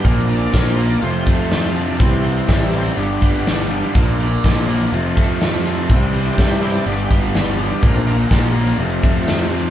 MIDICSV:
0, 0, Header, 1, 6, 480
1, 0, Start_track
1, 0, Tempo, 485437
1, 47, Time_signature, 4, 2, 24, 8
1, 9593, End_track
2, 0, Start_track
2, 0, Title_t, "Tonewheel organ"
2, 0, Program_c, 0, 16
2, 38, Note_on_c, 0, 53, 50
2, 43, Note_on_c, 0, 58, 48
2, 58, Note_on_c, 0, 62, 56
2, 368, Note_on_c, 0, 74, 97
2, 525, Note_off_c, 0, 74, 0
2, 543, Note_on_c, 0, 73, 76
2, 689, Note_on_c, 0, 72, 85
2, 693, Note_off_c, 0, 73, 0
2, 846, Note_off_c, 0, 72, 0
2, 854, Note_on_c, 0, 74, 85
2, 969, Note_off_c, 0, 53, 0
2, 971, Note_off_c, 0, 58, 0
2, 979, Note_off_c, 0, 62, 0
2, 1006, Note_on_c, 0, 57, 51
2, 1007, Note_on_c, 0, 53, 54
2, 1007, Note_on_c, 0, 60, 59
2, 1009, Note_off_c, 0, 74, 0
2, 1015, Note_on_c, 0, 72, 84
2, 1170, Note_off_c, 0, 72, 0
2, 1193, Note_on_c, 0, 67, 78
2, 1337, Note_on_c, 0, 65, 85
2, 1340, Note_off_c, 0, 67, 0
2, 1492, Note_off_c, 0, 65, 0
2, 1514, Note_on_c, 0, 67, 87
2, 1661, Note_off_c, 0, 67, 0
2, 1662, Note_on_c, 0, 65, 82
2, 1697, Note_off_c, 0, 53, 0
2, 1697, Note_off_c, 0, 57, 0
2, 1697, Note_off_c, 0, 60, 0
2, 1791, Note_on_c, 0, 62, 85
2, 1815, Note_off_c, 0, 65, 0
2, 1960, Note_off_c, 0, 62, 0
2, 1962, Note_on_c, 0, 52, 53
2, 1971, Note_on_c, 0, 60, 89
2, 1986, Note_on_c, 0, 55, 46
2, 2086, Note_on_c, 0, 59, 59
2, 2120, Note_off_c, 0, 59, 0
2, 2123, Note_off_c, 0, 60, 0
2, 2135, Note_on_c, 0, 60, 92
2, 2894, Note_off_c, 0, 52, 0
2, 2906, Note_off_c, 0, 55, 0
2, 2915, Note_off_c, 0, 60, 0
2, 2930, Note_on_c, 0, 55, 54
2, 2936, Note_on_c, 0, 59, 47
2, 2942, Note_on_c, 0, 62, 59
2, 3858, Note_off_c, 0, 55, 0
2, 3862, Note_off_c, 0, 59, 0
2, 3865, Note_off_c, 0, 62, 0
2, 3906, Note_on_c, 0, 53, 56
2, 3908, Note_on_c, 0, 58, 45
2, 3920, Note_on_c, 0, 62, 57
2, 4225, Note_off_c, 0, 53, 0
2, 4226, Note_off_c, 0, 58, 0
2, 4232, Note_off_c, 0, 62, 0
2, 4881, Note_on_c, 0, 53, 54
2, 4888, Note_on_c, 0, 57, 50
2, 4891, Note_on_c, 0, 60, 63
2, 5193, Note_off_c, 0, 53, 0
2, 5197, Note_off_c, 0, 57, 0
2, 5198, Note_off_c, 0, 60, 0
2, 5847, Note_on_c, 0, 52, 56
2, 5853, Note_on_c, 0, 55, 48
2, 5860, Note_on_c, 0, 60, 58
2, 6158, Note_on_c, 0, 74, 90
2, 6306, Note_off_c, 0, 74, 0
2, 6331, Note_on_c, 0, 72, 81
2, 6473, Note_off_c, 0, 72, 0
2, 6485, Note_on_c, 0, 72, 80
2, 6630, Note_off_c, 0, 72, 0
2, 6632, Note_on_c, 0, 74, 94
2, 6755, Note_off_c, 0, 52, 0
2, 6758, Note_off_c, 0, 55, 0
2, 6762, Note_off_c, 0, 60, 0
2, 6782, Note_on_c, 0, 55, 53
2, 6783, Note_off_c, 0, 74, 0
2, 6793, Note_on_c, 0, 62, 60
2, 6806, Note_on_c, 0, 59, 50
2, 6810, Note_on_c, 0, 74, 84
2, 6952, Note_off_c, 0, 74, 0
2, 6955, Note_on_c, 0, 67, 79
2, 7101, Note_off_c, 0, 55, 0
2, 7104, Note_off_c, 0, 67, 0
2, 7107, Note_off_c, 0, 62, 0
2, 7114, Note_off_c, 0, 59, 0
2, 7121, Note_on_c, 0, 65, 84
2, 7267, Note_off_c, 0, 65, 0
2, 7285, Note_on_c, 0, 67, 86
2, 7429, Note_off_c, 0, 67, 0
2, 7435, Note_on_c, 0, 65, 81
2, 7583, Note_off_c, 0, 65, 0
2, 7613, Note_on_c, 0, 62, 94
2, 7752, Note_off_c, 0, 62, 0
2, 7760, Note_on_c, 0, 58, 49
2, 7767, Note_on_c, 0, 53, 55
2, 7774, Note_on_c, 0, 62, 60
2, 7775, Note_on_c, 0, 60, 93
2, 7880, Note_on_c, 0, 57, 74
2, 7907, Note_off_c, 0, 57, 0
2, 7913, Note_off_c, 0, 58, 0
2, 7913, Note_off_c, 0, 60, 0
2, 7925, Note_on_c, 0, 58, 100
2, 8073, Note_off_c, 0, 53, 0
2, 8076, Note_off_c, 0, 62, 0
2, 8685, Note_off_c, 0, 58, 0
2, 8708, Note_on_c, 0, 60, 64
2, 8714, Note_on_c, 0, 53, 57
2, 8717, Note_on_c, 0, 57, 49
2, 9382, Note_off_c, 0, 60, 0
2, 9385, Note_off_c, 0, 53, 0
2, 9387, Note_off_c, 0, 57, 0
2, 9593, End_track
3, 0, Start_track
3, 0, Title_t, "Overdriven electric guitar"
3, 0, Program_c, 1, 29
3, 30, Note_on_c, 1, 46, 81
3, 40, Note_on_c, 1, 50, 87
3, 45, Note_on_c, 1, 58, 96
3, 50, Note_on_c, 1, 62, 90
3, 54, Note_on_c, 1, 65, 93
3, 735, Note_off_c, 1, 65, 0
3, 746, Note_off_c, 1, 62, 0
3, 747, Note_off_c, 1, 58, 0
3, 747, Note_on_c, 1, 65, 82
3, 749, Note_off_c, 1, 46, 0
3, 753, Note_off_c, 1, 50, 0
3, 758, Note_on_c, 1, 62, 73
3, 759, Note_on_c, 1, 58, 65
3, 771, Note_on_c, 1, 50, 61
3, 777, Note_on_c, 1, 46, 65
3, 983, Note_on_c, 1, 41, 87
3, 986, Note_off_c, 1, 65, 0
3, 987, Note_off_c, 1, 46, 0
3, 991, Note_on_c, 1, 48, 82
3, 992, Note_off_c, 1, 50, 0
3, 992, Note_off_c, 1, 58, 0
3, 992, Note_off_c, 1, 62, 0
3, 996, Note_on_c, 1, 53, 91
3, 996, Note_on_c, 1, 57, 91
3, 1002, Note_on_c, 1, 60, 94
3, 1007, Note_on_c, 1, 65, 93
3, 1695, Note_off_c, 1, 65, 0
3, 1700, Note_off_c, 1, 60, 0
3, 1705, Note_off_c, 1, 57, 0
3, 1707, Note_off_c, 1, 41, 0
3, 1707, Note_on_c, 1, 65, 77
3, 1710, Note_off_c, 1, 53, 0
3, 1711, Note_off_c, 1, 48, 0
3, 1711, Note_on_c, 1, 60, 78
3, 1717, Note_on_c, 1, 57, 80
3, 1722, Note_on_c, 1, 48, 69
3, 1722, Note_on_c, 1, 53, 69
3, 1729, Note_on_c, 1, 41, 66
3, 1947, Note_off_c, 1, 48, 0
3, 1949, Note_off_c, 1, 65, 0
3, 1951, Note_off_c, 1, 60, 0
3, 1954, Note_off_c, 1, 57, 0
3, 1956, Note_off_c, 1, 53, 0
3, 1959, Note_on_c, 1, 48, 89
3, 1960, Note_off_c, 1, 41, 0
3, 1965, Note_on_c, 1, 52, 90
3, 1969, Note_on_c, 1, 55, 91
3, 1975, Note_on_c, 1, 60, 95
3, 1976, Note_on_c, 1, 64, 96
3, 2665, Note_off_c, 1, 64, 0
3, 2676, Note_off_c, 1, 60, 0
3, 2677, Note_off_c, 1, 48, 0
3, 2677, Note_on_c, 1, 64, 75
3, 2680, Note_off_c, 1, 52, 0
3, 2682, Note_off_c, 1, 55, 0
3, 2688, Note_on_c, 1, 60, 79
3, 2692, Note_on_c, 1, 55, 68
3, 2700, Note_on_c, 1, 52, 72
3, 2706, Note_on_c, 1, 48, 61
3, 2913, Note_on_c, 1, 43, 82
3, 2914, Note_off_c, 1, 55, 0
3, 2915, Note_off_c, 1, 64, 0
3, 2916, Note_off_c, 1, 48, 0
3, 2920, Note_on_c, 1, 50, 84
3, 2921, Note_off_c, 1, 60, 0
3, 2922, Note_off_c, 1, 52, 0
3, 2926, Note_on_c, 1, 55, 82
3, 2927, Note_on_c, 1, 59, 93
3, 2933, Note_on_c, 1, 62, 90
3, 2936, Note_on_c, 1, 67, 97
3, 3635, Note_off_c, 1, 43, 0
3, 3635, Note_off_c, 1, 67, 0
3, 3638, Note_off_c, 1, 50, 0
3, 3640, Note_off_c, 1, 62, 0
3, 3642, Note_off_c, 1, 55, 0
3, 3642, Note_off_c, 1, 59, 0
3, 3646, Note_on_c, 1, 67, 76
3, 3651, Note_on_c, 1, 62, 81
3, 3660, Note_on_c, 1, 59, 67
3, 3661, Note_on_c, 1, 55, 68
3, 3663, Note_on_c, 1, 50, 70
3, 3670, Note_on_c, 1, 43, 67
3, 3881, Note_off_c, 1, 67, 0
3, 3882, Note_off_c, 1, 50, 0
3, 3884, Note_off_c, 1, 62, 0
3, 3888, Note_off_c, 1, 55, 0
3, 3888, Note_off_c, 1, 59, 0
3, 3890, Note_on_c, 1, 46, 93
3, 3893, Note_off_c, 1, 43, 0
3, 3894, Note_on_c, 1, 50, 90
3, 3901, Note_on_c, 1, 58, 98
3, 3907, Note_on_c, 1, 62, 89
3, 3910, Note_on_c, 1, 65, 104
3, 4604, Note_off_c, 1, 46, 0
3, 4606, Note_off_c, 1, 50, 0
3, 4609, Note_off_c, 1, 58, 0
3, 4612, Note_off_c, 1, 62, 0
3, 4613, Note_off_c, 1, 65, 0
3, 4626, Note_on_c, 1, 65, 76
3, 4633, Note_on_c, 1, 62, 71
3, 4636, Note_on_c, 1, 58, 66
3, 4642, Note_on_c, 1, 50, 65
3, 4646, Note_on_c, 1, 46, 62
3, 4851, Note_off_c, 1, 65, 0
3, 4854, Note_off_c, 1, 46, 0
3, 4855, Note_off_c, 1, 62, 0
3, 4856, Note_on_c, 1, 41, 89
3, 4857, Note_off_c, 1, 58, 0
3, 4858, Note_on_c, 1, 48, 89
3, 4860, Note_off_c, 1, 50, 0
3, 4869, Note_on_c, 1, 53, 90
3, 4871, Note_on_c, 1, 57, 92
3, 4875, Note_on_c, 1, 60, 91
3, 4876, Note_on_c, 1, 65, 95
3, 5566, Note_off_c, 1, 41, 0
3, 5567, Note_off_c, 1, 48, 0
3, 5573, Note_off_c, 1, 53, 0
3, 5574, Note_off_c, 1, 57, 0
3, 5576, Note_off_c, 1, 60, 0
3, 5576, Note_off_c, 1, 65, 0
3, 5590, Note_on_c, 1, 65, 80
3, 5591, Note_on_c, 1, 60, 74
3, 5600, Note_on_c, 1, 57, 72
3, 5601, Note_on_c, 1, 53, 75
3, 5607, Note_on_c, 1, 41, 65
3, 5608, Note_on_c, 1, 48, 70
3, 5813, Note_off_c, 1, 65, 0
3, 5814, Note_off_c, 1, 60, 0
3, 5816, Note_off_c, 1, 48, 0
3, 5818, Note_off_c, 1, 57, 0
3, 5819, Note_off_c, 1, 53, 0
3, 5821, Note_off_c, 1, 41, 0
3, 5828, Note_on_c, 1, 48, 83
3, 5836, Note_on_c, 1, 52, 90
3, 5839, Note_on_c, 1, 55, 88
3, 5847, Note_on_c, 1, 60, 99
3, 5849, Note_on_c, 1, 64, 104
3, 6531, Note_off_c, 1, 48, 0
3, 6531, Note_off_c, 1, 64, 0
3, 6535, Note_off_c, 1, 52, 0
3, 6537, Note_off_c, 1, 55, 0
3, 6541, Note_off_c, 1, 60, 0
3, 6543, Note_on_c, 1, 64, 77
3, 6551, Note_on_c, 1, 60, 68
3, 6559, Note_on_c, 1, 55, 69
3, 6566, Note_on_c, 1, 52, 64
3, 6567, Note_on_c, 1, 48, 66
3, 6769, Note_off_c, 1, 64, 0
3, 6771, Note_on_c, 1, 43, 85
3, 6773, Note_off_c, 1, 55, 0
3, 6773, Note_off_c, 1, 60, 0
3, 6775, Note_off_c, 1, 48, 0
3, 6779, Note_on_c, 1, 50, 88
3, 6780, Note_off_c, 1, 52, 0
3, 6785, Note_on_c, 1, 55, 84
3, 6787, Note_on_c, 1, 59, 95
3, 6788, Note_on_c, 1, 62, 90
3, 6794, Note_on_c, 1, 67, 99
3, 7481, Note_off_c, 1, 43, 0
3, 7483, Note_off_c, 1, 67, 0
3, 7485, Note_off_c, 1, 50, 0
3, 7488, Note_off_c, 1, 55, 0
3, 7489, Note_off_c, 1, 59, 0
3, 7489, Note_off_c, 1, 62, 0
3, 7495, Note_on_c, 1, 67, 81
3, 7502, Note_on_c, 1, 59, 80
3, 7504, Note_on_c, 1, 62, 79
3, 7512, Note_on_c, 1, 50, 69
3, 7512, Note_on_c, 1, 55, 74
3, 7519, Note_on_c, 1, 43, 63
3, 7723, Note_off_c, 1, 50, 0
3, 7723, Note_off_c, 1, 67, 0
3, 7727, Note_off_c, 1, 59, 0
3, 7727, Note_off_c, 1, 62, 0
3, 7728, Note_on_c, 1, 46, 98
3, 7731, Note_off_c, 1, 55, 0
3, 7735, Note_off_c, 1, 43, 0
3, 7735, Note_on_c, 1, 50, 92
3, 7741, Note_on_c, 1, 62, 98
3, 7742, Note_on_c, 1, 58, 94
3, 7748, Note_on_c, 1, 65, 98
3, 8420, Note_off_c, 1, 65, 0
3, 8425, Note_off_c, 1, 62, 0
3, 8431, Note_off_c, 1, 58, 0
3, 8432, Note_on_c, 1, 65, 76
3, 8437, Note_off_c, 1, 46, 0
3, 8437, Note_on_c, 1, 62, 83
3, 8438, Note_off_c, 1, 50, 0
3, 8443, Note_on_c, 1, 58, 78
3, 8450, Note_on_c, 1, 50, 71
3, 8456, Note_on_c, 1, 46, 67
3, 8669, Note_off_c, 1, 65, 0
3, 8672, Note_off_c, 1, 62, 0
3, 8675, Note_off_c, 1, 58, 0
3, 8678, Note_off_c, 1, 46, 0
3, 8678, Note_off_c, 1, 50, 0
3, 8678, Note_on_c, 1, 41, 89
3, 8682, Note_on_c, 1, 48, 94
3, 8689, Note_on_c, 1, 53, 92
3, 8690, Note_on_c, 1, 57, 84
3, 8696, Note_on_c, 1, 60, 88
3, 8699, Note_on_c, 1, 65, 86
3, 9373, Note_off_c, 1, 65, 0
3, 9376, Note_off_c, 1, 60, 0
3, 9381, Note_off_c, 1, 57, 0
3, 9383, Note_off_c, 1, 53, 0
3, 9385, Note_on_c, 1, 65, 91
3, 9387, Note_on_c, 1, 60, 80
3, 9388, Note_off_c, 1, 41, 0
3, 9390, Note_off_c, 1, 48, 0
3, 9393, Note_on_c, 1, 57, 80
3, 9395, Note_on_c, 1, 53, 74
3, 9402, Note_on_c, 1, 48, 69
3, 9406, Note_on_c, 1, 41, 68
3, 9593, Note_off_c, 1, 41, 0
3, 9593, Note_off_c, 1, 48, 0
3, 9593, Note_off_c, 1, 53, 0
3, 9593, Note_off_c, 1, 57, 0
3, 9593, Note_off_c, 1, 60, 0
3, 9593, Note_off_c, 1, 65, 0
3, 9593, End_track
4, 0, Start_track
4, 0, Title_t, "Overdriven electric guitar"
4, 0, Program_c, 2, 29
4, 287, Note_on_c, 2, 46, 67
4, 526, Note_on_c, 2, 53, 69
4, 1011, Note_off_c, 2, 53, 0
4, 1012, Note_off_c, 2, 46, 0
4, 1239, Note_on_c, 2, 57, 64
4, 1486, Note_on_c, 2, 53, 68
4, 1970, Note_off_c, 2, 57, 0
4, 1973, Note_off_c, 2, 53, 0
4, 2209, Note_on_c, 2, 48, 63
4, 2447, Note_on_c, 2, 55, 77
4, 2935, Note_off_c, 2, 55, 0
4, 2937, Note_off_c, 2, 48, 0
4, 3180, Note_on_c, 2, 59, 63
4, 3424, Note_on_c, 2, 55, 68
4, 3903, Note_off_c, 2, 59, 0
4, 3904, Note_off_c, 2, 55, 0
4, 4151, Note_on_c, 2, 46, 66
4, 4388, Note_on_c, 2, 53, 71
4, 4867, Note_off_c, 2, 53, 0
4, 4869, Note_off_c, 2, 46, 0
4, 5105, Note_on_c, 2, 57, 66
4, 5346, Note_on_c, 2, 53, 66
4, 5825, Note_off_c, 2, 53, 0
4, 5825, Note_off_c, 2, 57, 0
4, 6068, Note_on_c, 2, 48, 62
4, 6302, Note_on_c, 2, 55, 74
4, 6782, Note_off_c, 2, 55, 0
4, 6785, Note_off_c, 2, 48, 0
4, 7021, Note_on_c, 2, 59, 63
4, 7261, Note_on_c, 2, 55, 73
4, 7740, Note_off_c, 2, 55, 0
4, 7740, Note_off_c, 2, 59, 0
4, 7977, Note_on_c, 2, 46, 64
4, 8211, Note_on_c, 2, 53, 70
4, 8692, Note_off_c, 2, 53, 0
4, 8695, Note_off_c, 2, 46, 0
4, 8926, Note_on_c, 2, 57, 68
4, 9156, Note_on_c, 2, 53, 71
4, 9593, Note_off_c, 2, 53, 0
4, 9593, Note_off_c, 2, 57, 0
4, 9593, End_track
5, 0, Start_track
5, 0, Title_t, "Picked electric bass"
5, 0, Program_c, 3, 34
5, 47, Note_on_c, 3, 34, 91
5, 448, Note_off_c, 3, 34, 0
5, 531, Note_on_c, 3, 34, 94
5, 932, Note_off_c, 3, 34, 0
5, 1011, Note_on_c, 3, 29, 86
5, 1212, Note_off_c, 3, 29, 0
5, 1256, Note_on_c, 3, 41, 91
5, 1978, Note_on_c, 3, 36, 97
5, 1993, Note_off_c, 3, 41, 0
5, 2378, Note_off_c, 3, 36, 0
5, 2459, Note_on_c, 3, 33, 88
5, 2859, Note_off_c, 3, 33, 0
5, 2941, Note_on_c, 3, 31, 98
5, 3141, Note_off_c, 3, 31, 0
5, 3183, Note_on_c, 3, 31, 76
5, 3782, Note_off_c, 3, 31, 0
5, 3911, Note_on_c, 3, 34, 90
5, 4307, Note_off_c, 3, 34, 0
5, 4393, Note_on_c, 3, 34, 88
5, 4788, Note_off_c, 3, 34, 0
5, 4867, Note_on_c, 3, 29, 91
5, 5066, Note_off_c, 3, 29, 0
5, 5111, Note_on_c, 3, 41, 86
5, 5831, Note_on_c, 3, 36, 95
5, 5846, Note_off_c, 3, 41, 0
5, 6227, Note_off_c, 3, 36, 0
5, 6304, Note_on_c, 3, 43, 89
5, 6702, Note_off_c, 3, 43, 0
5, 6787, Note_on_c, 3, 31, 98
5, 6984, Note_off_c, 3, 31, 0
5, 7026, Note_on_c, 3, 31, 81
5, 7620, Note_off_c, 3, 31, 0
5, 7743, Note_on_c, 3, 34, 96
5, 8139, Note_off_c, 3, 34, 0
5, 8216, Note_on_c, 3, 34, 95
5, 8614, Note_off_c, 3, 34, 0
5, 8684, Note_on_c, 3, 29, 93
5, 8887, Note_off_c, 3, 29, 0
5, 8930, Note_on_c, 3, 41, 88
5, 9593, Note_off_c, 3, 41, 0
5, 9593, End_track
6, 0, Start_track
6, 0, Title_t, "Drums"
6, 46, Note_on_c, 9, 42, 69
6, 47, Note_on_c, 9, 36, 101
6, 145, Note_off_c, 9, 42, 0
6, 146, Note_off_c, 9, 36, 0
6, 291, Note_on_c, 9, 42, 67
6, 390, Note_off_c, 9, 42, 0
6, 530, Note_on_c, 9, 36, 83
6, 535, Note_on_c, 9, 42, 65
6, 540, Note_on_c, 9, 38, 101
6, 629, Note_off_c, 9, 36, 0
6, 634, Note_off_c, 9, 42, 0
6, 639, Note_off_c, 9, 38, 0
6, 776, Note_on_c, 9, 42, 74
6, 875, Note_off_c, 9, 42, 0
6, 890, Note_on_c, 9, 42, 68
6, 989, Note_off_c, 9, 42, 0
6, 1015, Note_on_c, 9, 42, 70
6, 1114, Note_off_c, 9, 42, 0
6, 1253, Note_on_c, 9, 42, 71
6, 1254, Note_on_c, 9, 36, 78
6, 1352, Note_off_c, 9, 36, 0
6, 1352, Note_off_c, 9, 42, 0
6, 1494, Note_on_c, 9, 42, 68
6, 1499, Note_on_c, 9, 38, 98
6, 1593, Note_off_c, 9, 42, 0
6, 1598, Note_off_c, 9, 38, 0
6, 1738, Note_on_c, 9, 42, 70
6, 1837, Note_off_c, 9, 42, 0
6, 1978, Note_on_c, 9, 36, 106
6, 1980, Note_on_c, 9, 42, 68
6, 2076, Note_off_c, 9, 36, 0
6, 2079, Note_off_c, 9, 42, 0
6, 2220, Note_on_c, 9, 42, 71
6, 2319, Note_off_c, 9, 42, 0
6, 2338, Note_on_c, 9, 42, 69
6, 2437, Note_off_c, 9, 42, 0
6, 2457, Note_on_c, 9, 42, 68
6, 2458, Note_on_c, 9, 36, 81
6, 2462, Note_on_c, 9, 38, 98
6, 2556, Note_off_c, 9, 42, 0
6, 2557, Note_off_c, 9, 36, 0
6, 2561, Note_off_c, 9, 38, 0
6, 2702, Note_on_c, 9, 42, 68
6, 2801, Note_off_c, 9, 42, 0
6, 2828, Note_on_c, 9, 42, 65
6, 2927, Note_off_c, 9, 42, 0
6, 2944, Note_on_c, 9, 42, 63
6, 3043, Note_off_c, 9, 42, 0
6, 3184, Note_on_c, 9, 36, 83
6, 3186, Note_on_c, 9, 42, 65
6, 3283, Note_off_c, 9, 36, 0
6, 3285, Note_off_c, 9, 42, 0
6, 3308, Note_on_c, 9, 42, 62
6, 3407, Note_off_c, 9, 42, 0
6, 3430, Note_on_c, 9, 42, 58
6, 3435, Note_on_c, 9, 38, 105
6, 3529, Note_off_c, 9, 42, 0
6, 3533, Note_off_c, 9, 38, 0
6, 3671, Note_on_c, 9, 42, 65
6, 3770, Note_off_c, 9, 42, 0
6, 3904, Note_on_c, 9, 42, 69
6, 3907, Note_on_c, 9, 36, 110
6, 4003, Note_off_c, 9, 42, 0
6, 4006, Note_off_c, 9, 36, 0
6, 4148, Note_on_c, 9, 42, 66
6, 4247, Note_off_c, 9, 42, 0
6, 4393, Note_on_c, 9, 36, 81
6, 4402, Note_on_c, 9, 42, 65
6, 4407, Note_on_c, 9, 38, 99
6, 4492, Note_off_c, 9, 36, 0
6, 4501, Note_off_c, 9, 42, 0
6, 4506, Note_off_c, 9, 38, 0
6, 4640, Note_on_c, 9, 42, 68
6, 4739, Note_off_c, 9, 42, 0
6, 4763, Note_on_c, 9, 42, 64
6, 4862, Note_off_c, 9, 42, 0
6, 4884, Note_on_c, 9, 42, 69
6, 4983, Note_off_c, 9, 42, 0
6, 5113, Note_on_c, 9, 36, 81
6, 5115, Note_on_c, 9, 42, 71
6, 5212, Note_off_c, 9, 36, 0
6, 5214, Note_off_c, 9, 42, 0
6, 5351, Note_on_c, 9, 42, 66
6, 5356, Note_on_c, 9, 38, 101
6, 5450, Note_off_c, 9, 42, 0
6, 5455, Note_off_c, 9, 38, 0
6, 5593, Note_on_c, 9, 42, 75
6, 5598, Note_on_c, 9, 38, 31
6, 5692, Note_off_c, 9, 42, 0
6, 5697, Note_off_c, 9, 38, 0
6, 5830, Note_on_c, 9, 36, 111
6, 5832, Note_on_c, 9, 42, 74
6, 5929, Note_off_c, 9, 36, 0
6, 5931, Note_off_c, 9, 42, 0
6, 6069, Note_on_c, 9, 42, 73
6, 6168, Note_off_c, 9, 42, 0
6, 6188, Note_on_c, 9, 42, 71
6, 6287, Note_off_c, 9, 42, 0
6, 6310, Note_on_c, 9, 36, 84
6, 6315, Note_on_c, 9, 42, 73
6, 6320, Note_on_c, 9, 38, 102
6, 6409, Note_off_c, 9, 36, 0
6, 6414, Note_off_c, 9, 42, 0
6, 6419, Note_off_c, 9, 38, 0
6, 6549, Note_on_c, 9, 42, 72
6, 6648, Note_off_c, 9, 42, 0
6, 6665, Note_on_c, 9, 42, 69
6, 6764, Note_off_c, 9, 42, 0
6, 6784, Note_on_c, 9, 42, 68
6, 6883, Note_off_c, 9, 42, 0
6, 7026, Note_on_c, 9, 36, 84
6, 7030, Note_on_c, 9, 42, 69
6, 7125, Note_off_c, 9, 36, 0
6, 7129, Note_off_c, 9, 42, 0
6, 7146, Note_on_c, 9, 42, 67
6, 7245, Note_off_c, 9, 42, 0
6, 7265, Note_on_c, 9, 42, 60
6, 7270, Note_on_c, 9, 38, 101
6, 7363, Note_off_c, 9, 42, 0
6, 7368, Note_off_c, 9, 38, 0
6, 7506, Note_on_c, 9, 42, 65
6, 7605, Note_off_c, 9, 42, 0
6, 7740, Note_on_c, 9, 42, 66
6, 7741, Note_on_c, 9, 36, 113
6, 7838, Note_off_c, 9, 42, 0
6, 7840, Note_off_c, 9, 36, 0
6, 7983, Note_on_c, 9, 42, 69
6, 8082, Note_off_c, 9, 42, 0
6, 8213, Note_on_c, 9, 42, 63
6, 8217, Note_on_c, 9, 36, 85
6, 8218, Note_on_c, 9, 38, 99
6, 8312, Note_off_c, 9, 42, 0
6, 8316, Note_off_c, 9, 36, 0
6, 8317, Note_off_c, 9, 38, 0
6, 8455, Note_on_c, 9, 42, 64
6, 8554, Note_off_c, 9, 42, 0
6, 8575, Note_on_c, 9, 42, 71
6, 8674, Note_off_c, 9, 42, 0
6, 8695, Note_on_c, 9, 42, 66
6, 8794, Note_off_c, 9, 42, 0
6, 8931, Note_on_c, 9, 42, 68
6, 8933, Note_on_c, 9, 36, 88
6, 9030, Note_off_c, 9, 42, 0
6, 9032, Note_off_c, 9, 36, 0
6, 9172, Note_on_c, 9, 42, 63
6, 9177, Note_on_c, 9, 38, 105
6, 9271, Note_off_c, 9, 42, 0
6, 9276, Note_off_c, 9, 38, 0
6, 9415, Note_on_c, 9, 42, 70
6, 9420, Note_on_c, 9, 38, 33
6, 9514, Note_off_c, 9, 42, 0
6, 9519, Note_off_c, 9, 38, 0
6, 9593, End_track
0, 0, End_of_file